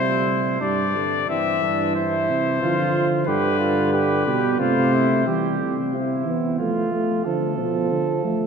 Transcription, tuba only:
0.00 0.58 C3 medium
0.61 1.28 G2 medium
1.29 1.60 G2 medium
1.62 2.31 G2 medium
2.30 2.62 C3 medium
2.63 3.26 D3 medium
3.28 4.25 G2 loud
4.27 4.59 B2 loud
4.60 5.26 C3 loud
5.27 5.58 E3 medium
5.61 6.28 C3 medium
6.27 6.59 E3 medium
6.60 7.09 F3 medium
7.26 7.60 D3 medium
7.59 7.93 B2 medium
7.91 8.24 D3 medium
8.25 8.47 F3 medium

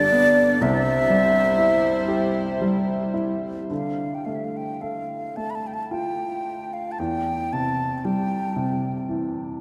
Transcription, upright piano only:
0.00 0.58 G1 medium
0.00 0.57 G2 medium
0.00 0.63 D3 medium
0.00 0.11 B3 medium
0.00 0.58 D4 medium
0.12 0.60 B3 medium
0.61 3.67 C2 medium
0.61 3.66 C3 medium
1.10 2.60 G3 medium
1.58 3.12 E4 medium
2.08 3.66 G4 soft
2.61 3.67 G3 soft
3.14 3.68 E4 soft
3.70 6.94 D3 soft
4.26 5.36 A3 soft
4.81 6.94 A4 soft
5.37 6.95 A3 soft
5.91 6.96 F4 soft
6.99 9.61 E2 medium
7.53 8.55 C3 soft
8.05 9.61 G3 soft
8.56 9.61 C3 soft
9.09 9.61 E3 soft

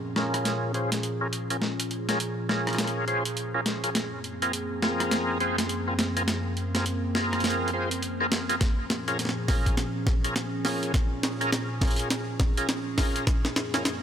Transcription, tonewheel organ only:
0.16 0.72 C#4 medium
0.16 0.72 F4 medium
0.16 0.72 G#4 medium
0.16 0.72 A#4 medium
0.74 0.90 C#4 medium
0.74 0.90 F4 medium
0.74 0.90 G#4 medium
0.74 0.90 C5 loud
1.21 1.28 C#4 medium
1.21 1.28 F4 medium
1.21 1.28 G#4 medium
1.21 1.28 A#4 medium
1.50 1.57 C#4 medium
1.50 1.57 F4 medium
1.50 1.57 G#4 medium
1.50 1.57 A#4 medium
2.09 2.19 C#4 medium
2.09 2.19 F4 medium
2.09 2.19 G#4 medium
2.09 2.19 A#4 medium
2.49 3.05 C#4 medium
2.49 3.05 F4 medium
2.49 3.05 G#4 medium
2.49 3.05 A#4 medium
3.08 3.24 C#4 medium
3.08 3.23 F4 medium
3.08 3.23 G#4 medium
3.08 3.24 C5 loud
3.54 3.61 C#4 medium
3.54 3.61 F4 medium
3.54 3.61 G#4 medium
3.54 3.61 A#4 medium
3.84 3.90 C#4 medium
3.84 3.90 F4 medium
3.84 3.90 G#4 medium
3.84 3.90 A#4 medium
4.42 4.52 C4 medium
4.42 4.52 F4 medium
4.42 4.52 G#4 medium
4.42 4.52 A#4 medium
4.83 5.38 C4 medium
4.83 5.38 F4 medium
4.83 5.38 G#4 medium
4.83 5.38 A#4 medium
5.40 5.56 C4 loud
5.40 5.56 F4 medium
5.40 5.56 G#4 medium
5.40 5.56 C5 loud
5.88 5.94 C4 medium
5.88 5.94 F4 medium
5.88 5.94 G#4 medium
5.88 5.94 A#4 medium
6.17 6.23 C4 medium
6.17 6.23 F4 medium
6.17 6.23 G#4 medium
6.17 6.23 A#4 medium
6.75 6.85 C4 medium
6.75 6.85 F4 medium
6.75 6.85 G#4 medium
6.75 6.85 A#4 medium
7.15 7.71 C4 medium
7.15 7.71 F4 medium
7.15 7.71 G#4 medium
7.15 7.71 A#4 medium
7.73 7.89 C4 loud
7.73 7.89 F4 medium
7.73 7.89 G#4 medium
7.73 7.89 C5 loud
8.20 8.27 C4 medium
8.20 8.27 F4 medium
8.20 8.27 G#4 medium
8.20 8.27 A#4 medium
8.49 8.56 C4 medium
8.49 8.56 F4 medium
8.49 8.56 G#4 medium
8.49 8.56 A#4 medium
9.08 9.18 C#4 medium
9.08 9.18 F4 medium
9.08 9.18 G#4 medium
9.08 9.18 A#4 medium
9.48 9.76 C#4 medium
9.48 9.76 F4 medium
9.48 9.76 G#4 medium
9.48 9.76 A#4 medium
10.24 10.34 C#4 medium
10.24 10.34 F4 medium
10.24 10.35 G#4 medium
10.24 10.35 A#4 medium
10.65 10.92 C#4 medium
10.65 10.92 F4 medium
10.65 10.92 G#4 medium
10.65 10.92 A#4 medium
11.41 11.51 C#4 medium
11.41 11.51 F4 medium
11.41 11.51 G#4 medium
11.41 11.51 A#4 medium
11.81 12.09 C#4 medium
11.81 12.09 F4 medium
11.81 12.09 G#4 medium
11.81 12.09 A#4 medium
12.58 12.68 C#4 medium
12.58 12.68 F4 medium
12.58 12.68 G#4 medium
12.58 12.68 A#4 medium
12.98 13.25 C#4 medium
12.98 13.25 F4 medium
12.98 13.25 G#4 medium
12.98 13.25 A#4 medium
13.74 13.84 C#4 medium
13.74 13.84 F4 medium
13.74 13.84 G#4 medium
13.74 13.84 A#4 medium

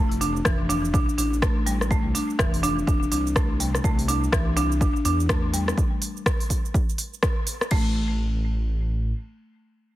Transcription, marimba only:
0.21 0.29 D4 medium
0.45 0.58 E3 loud
0.69 0.77 D4 loud
0.94 1.07 D4 medium
1.18 1.26 D4 medium
1.42 1.55 A3 medium
1.66 1.74 G3 medium
1.91 2.04 A3 medium
2.15 2.23 D4 medium
2.39 2.52 E3 loud
2.63 2.71 D4 loud
2.87 3.00 D4 medium
3.12 3.19 D4 medium
3.36 3.49 A3 medium
3.60 3.68 G3 medium
3.84 3.97 A3 medium
4.08 4.16 D4 medium
4.32 4.45 E3 loud
4.57 4.64 D4 loud
4.81 4.94 D4 medium
5.05 5.13 D4 medium
5.29 5.42 A3 medium
5.54 5.61 G3 medium
7.71 7.94 A3 loud

